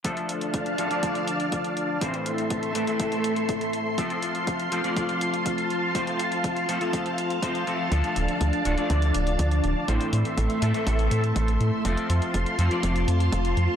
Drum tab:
HH |xxxxxxxxxxxxxxx-|xxxxxxxxxxxxxxx-|xxxxxxxxxxxxxxx-|xxxxxxxxxxxxxxx-|
BD |o---o---o---o---|o---o---o---o---|o---o---o---o---|o---o---o---o---|

HH |xxxxxxxxxxxxxxx-|xxxxxxxxxxxxxxx-|xxxxxxxxxxxxxxx-|
BD |o---o---o---o---|o---o---o---o---|o---o---o---o---|